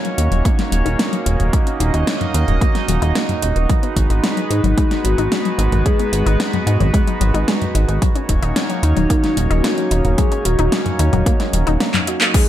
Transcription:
Already playing: A#3 C#4 D#4 F#4 C#5
0.05 F#3, closed hi-hat
0.18 D#2 D#4, closed hi-hat
0.31 D#1 F#3, closed hi-hat
0.45 A#3, kick, closed hi-hat
0.58 F#3, snare, closed hi-hat
0.72 D#1 F#3, closed hi-hat
0.85 D#1 D#4, closed hi-hat
0.99 A#3, snare, closed hi-hat
1.12 F#3, closed hi-hat
1.26 D#1 D#4, closed hi-hat
1.39 D#1 A#3, closed hi-hat, mid tom
1.53 F#3 D#5, kick, closed hi-hat
1.67 C#4, closed hi-hat
1.80 D#1 D#4, closed hi-hat
1.94 D#1 D#4, closed hi-hat
2.07 C#4, snare, closed hi-hat
2.21 F#3, closed hi-hat, mid tom
2.34 D#2 D#4, closed hi-hat
2.48 D#1 F#3, closed hi-hat, mid tom
2.61 A#3, kick, closed hi-hat
2.75 F#3, snare, closed hi-hat
2.88 D#1 F#3, closed hi-hat
3.02 D#1 D#4, closed hi-hat
3.15 A#3, snare, closed hi-hat
3.29 F#3, closed hi-hat, mid tom
3.42 D#1 D#4, closed hi-hat
3.56 D#1 A#3, closed hi-hat
3.69 F#3 G#3 B3 B4, kick, closed hi-hat
3.83 B3, closed hi-hat
3.96 G#1 D#4, kick, closed hi-hat
4.10 G#1 D#4, closed hi-hat
4.23 B3, snare, closed hi-hat
4.37 F#3, closed hi-hat
4.50 G#2 D#4, closed hi-hat
4.64 G#1 F#3, closed hi-hat
4.78 G#3, kick, closed hi-hat
4.91 F#3, snare, closed hi-hat
5.04 G#1 F#3 F#4, closed hi-hat
5.18 G#1 D#4, closed hi-hat
5.32 G#3, snare, closed hi-hat
5.45 F#3, closed hi-hat
5.58 G#1 D#4, closed hi-hat
5.72 G#1 G#3, closed hi-hat, mid tom
5.86 F#3 G#4, kick, closed hi-hat
5.99 B3, closed hi-hat
6.13 G#1 D#4 G#4, closed hi-hat
6.26 G#1 D#4, closed hi-hat
6.40 B3, snare, closed hi-hat
6.53 F#3, closed hi-hat, mid tom
6.67 G#2 D#4, closed hi-hat
6.80 G#1 F#3, closed hi-hat, mid tom
6.94 G#3, kick, closed hi-hat
7.07 F#3, closed hi-hat
7.21 G#1 F#3, closed hi-hat
7.34 G#1 D#4, closed hi-hat
7.48 G#3, snare, closed hi-hat
7.61 F#3, closed hi-hat, mid tom
7.75 G#1 D#4, closed hi-hat
7.88 G#1 G#3, closed hi-hat
8.02 F#3 A#3 C#4 D#4 C#5, kick, closed hi-hat
8.15 C#4, closed hi-hat
8.29 D#1 D#4, kick, closed hi-hat
8.42 D#1 D#4, closed hi-hat
8.56 C#4, snare, closed hi-hat
8.69 F#3, closed hi-hat
8.83 D#2 D#4, closed hi-hat
8.96 D#1 F#3, closed hi-hat
9.10 A#3, kick, closed hi-hat
9.23 F#3, snare, closed hi-hat
9.37 D#1 F#3 F#4, closed hi-hat
9.51 D#1 D#4, closed hi-hat
9.64 A#3, snare, closed hi-hat
9.78 F#3, closed hi-hat
9.91 D#1 D#4, closed hi-hat
10.05 D#1 A#3, closed hi-hat, mid tom
10.18 F#3 G#4, kick, closed hi-hat
10.32 C#4, closed hi-hat
10.45 D#1 D#4 F#4, closed hi-hat
10.59 D#1 D#4, closed hi-hat
10.72 C#4, snare, closed hi-hat
10.86 F#3, closed hi-hat, mid tom
10.99 D#2 D#4, closed hi-hat
11.13 D#1 F#3, closed hi-hat, mid tom
11.26 A#3, kick, closed hi-hat
11.40 F#3, snare, closed hi-hat
11.53 D#1 F#3, closed hi-hat
11.67 D#1 D#4, closed hi-hat
11.80 A#3, snare, closed hi-hat
11.94 F#3, clap, closed hi-hat, mid tom
12.07 D#4 F#4, closed hi-hat
12.21 A#3, clap, closed hi-hat
12.34 F#3 G#3 B3 D#4 F#4 G#4 B4, kick, closed hi-hat, crash

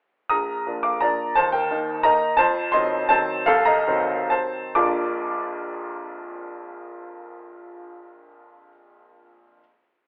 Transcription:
0.29 A#1 A#5 D#6
0.67 F3 A#3 D4
0.83 F5 D6
1.01 F3 A#3 D4 D5 A#5
1.35 D#2 C5 A5
1.52 A#4 G5
1.71 D#3 A#3 D#4
2.03 D#3 A#3 D#4 D#5 A#5
2.37 F2 C5 A5
2.72 D#3 F#3 C4 D#5 C6
3.09 D#3 F#3 C4 C5 A5
3.46 C2 A4 F5
3.65 D#5 A#5
3.87 D#3 F#3 C4
4.30 C5 A5
4.75 A#1 F2 F3 A#3 D4 F4 D6

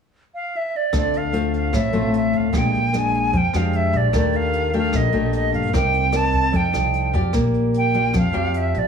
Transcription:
0.35 F5
0.56 E5
0.76 D5
0.93 D2 D3 A3 C4 F4, kick, cross-stick, closed hi-hat
0.97 D5
1.13 F5, closed hi-hat
1.33 A3 C4 F4, closed hi-hat
1.54 F5, closed hi-hat
1.73 A1 A2 E5, kick, cross-stick, closed hi-hat
1.93 A1 A3 C4 F4, closed hi-hat
2.14 E5, closed hi-hat
2.33 D2 F5, closed hi-hat
2.53 A#1 A#2 G#3 D4 G4, kick, cross-stick, closed hi-hat
2.58 G5
2.74 closed hi-hat
2.93 G#3 D4, cross-stick, closed hi-hat
2.98 G#5
3.14 closed hi-hat
3.33 F2 F3 G5, kick, closed hi-hat
3.53 F2 G#3 D4 G4 F5, cross-stick, closed hi-hat
3.73 E5, closed hi-hat
3.93 A#1 D5, closed hi-hat
4.13 D#2 D#3 A3 D4 G4 D5, kick, cross-stick, closed hi-hat
4.33 F5, closed hi-hat
4.53 closed hi-hat
4.73 A3 D4 G4, closed hi-hat
4.78 F5
4.93 A#1 A#2 D#5, kick, cross-stick, closed hi-hat
5.13 A#1 A3 D4 G4, closed hi-hat
5.33 D#5, closed hi-hat
5.52 G2 F5, closed hi-hat
5.73 C2 C4 D#4 A#4 D5 G5, kick, cross-stick, closed hi-hat
5.93 closed hi-hat
6.12 D#4 A#4 D5, cross-stick, closed hi-hat
6.16 A5
6.32 kick, closed hi-hat
6.52 F2 F3 D#4 A4 D5, kick, closed hi-hat
6.56 G5
6.73 C2 D#4 A4 D5, cross-stick, closed hi-hat
6.94 closed hi-hat
7.13 F2 F4 G4 D5, kick, closed hi-hat
7.33 A#1 A#3, kick, cross-stick, closed hi-hat
7.54 closed hi-hat
7.74 G5, closed hi-hat
7.94 F4 G4 D5, closed hi-hat
8.13 F2 F3 F5, kick, cross-stick, closed hi-hat
8.33 F2 F4 G4 D5, closed hi-hat
8.54 E5, closed hi-hat
8.74 A1 D5, closed hi-hat

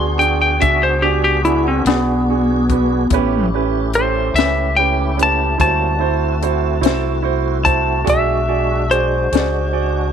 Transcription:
Already playing: D2 B3 D4 F#4 G#4 C6
0.18 D4 F#4 G#4 G5, closed hi-hat
0.41 G5
0.59 C#2 D4 F#4 G#4 E5, kick, closed hi-hat
0.83 C5
1.02 D4 F#4 G4 G#4
1.24 G4
1.45 D4 E4 F#4 G#4, closed hi-hat
1.68 C4
1.85 B1 B3 D4 F#4, snare, closed hi-hat
1.90 G#4
2.28 D4 F#4 G#4
2.70 D4 F#4 B4, kick, closed hi-hat
3.10 A1 A3 C#4 E4 G4, kick, closed hi-hat
3.14 G4 B4
3.54 C#4 G4 B4
3.94 C#4 G4 C5, closed hi-hat
3.98 A4
4.34 C#2 C#4 G4 E5, closed hi-hat
4.38 B4, snare
4.77 C#4 G4 B4 G5
5.17 C#4 G4 B4, closed hi-hat
5.23 A5
5.58 D2 G3 A#3 C#4 E4 F#4 C5 A5, kick, closed hi-hat
5.99 A3 C4 E4 F#4 C5
6.43 E4 F#4 C5, closed hi-hat
6.81 C2 E4 F#4 C5, closed hi-hat
6.86 snare
7.23 E4 F#4 C5
7.63 E4 F#4 C5 A5, kick, closed hi-hat
8.04 B1 G#3 D4 F#4 G#4 D5, kick, closed hi-hat
8.10 E5
8.48 F#4 G#4 D5
8.90 F#4 G#4 C5 D5, closed hi-hat
9.32 C#2 F#4 G#4 D5, snare, closed hi-hat
9.73 F#4 G#4 D5

